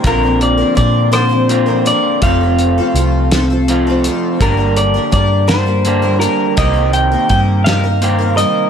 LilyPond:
<<
  \new Staff \with { instrumentName = "Clean electric guitar" } { \time 6/8 \key g \minor \tempo 4. = 55 bes'8 d''8 d''8 c''4 d''8 | f''2~ f''8 r8 | bes'8 d''8 d''8 c''4 bes'8 | ees''8 g''8 g''8 f''4 ees''8 | }
  \new Staff \with { instrumentName = "Twelve-string acoustic guitar" } { \time 6/8 \key g \minor <bes, d f c' d' bes'>16 <f c' d' bes'>8 <f c' d' bes'>16 <f c' d' bes'>8 <bes, d f c' d' bes'>16 <f c' d' bes'>8 <f c' d' bes'>16 <f c' d' bes'>8 | <f c' f' a'>16 <c' f' a'>8 <c' f' a'>16 <f c' f' a'>8 <f c' f' a'>16 <c' f' a'>8 <c' f' a'>16 <f c' f' a'>8 | <g, d g bes d' bes'>16 <g bes d' bes'>8 <g bes d' bes'>16 <g bes d' bes'>8 <g, d g bes d' bes'>16 <g bes d' bes'>8 <g bes d' bes'>16 <g bes d' bes'>8 | <c g bes ees' bes'>16 <bes ees' bes'>8 <bes ees' bes'>16 <g bes ees' bes'>8 <c g bes ees' bes'>16 <bes ees' bes'>8 <bes ees' bes'>16 <g bes ees' bes'>8 | }
  \new Staff \with { instrumentName = "Clean electric guitar" } { \time 6/8 \key g \minor <bes, d bes c' f'>2 <bes, d bes c' f'>4 | <f, c f a c' f'>2 <f, c f a c' f'>4 | <g, d g bes d' g'>2 <g, d g bes d' g'>4 | <c ees bes c' g'>2 <c ees bes c' g'>4 | }
  \new Staff \with { instrumentName = "Picked electric bass" } { \clef bass \time 6/8 \key g \minor bes,,4 bes,2 | f,,4 c,2 | g,,4 g,2 | c,4 g,2 | }
  \new DrumStaff \with { instrumentName = "Drums" } \drummode { \time 6/8 <hh bd>8 hh8 <hh bd>8 <hh ss>8 hh8 hh8 | <hh bd>8 hh8 hh8 <hh sn>8 hh8 hh8 | <hh bd>8 hh8 <hh bd>8 <hh sn>8 hh8 hh8 | <hh bd>8 hh8 <hh bd>8 <hh sn>8 hh8 hh8 | }
>>